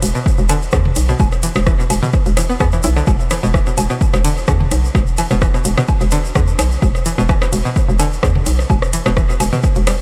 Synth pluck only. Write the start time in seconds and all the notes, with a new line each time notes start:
0.15 B2
0.49 D3
0.73 D3
1.09 B2
1.43 E3
1.67 E3
1.79 B2
2.03 B2
2.37 E3
2.49 B3
2.60 B3
2.73 E3
2.84 E4
2.96 D3
3.31 E3
3.43 B2
3.54 E3
3.67 B2
3.90 B2
4.24 D3
4.48 D3
5.18 E3
5.31 B2
5.42 E3
5.54 B2
5.78 B2
6.12 D3
6.36 D3
7.06 E3
7.18 B2
7.29 E3
7.42 B2
7.65 B2
8.00 D3
8.23 D3
8.93 E3
9.06 B2
9.17 E3
9.29 B2
9.53 B2
9.87 G3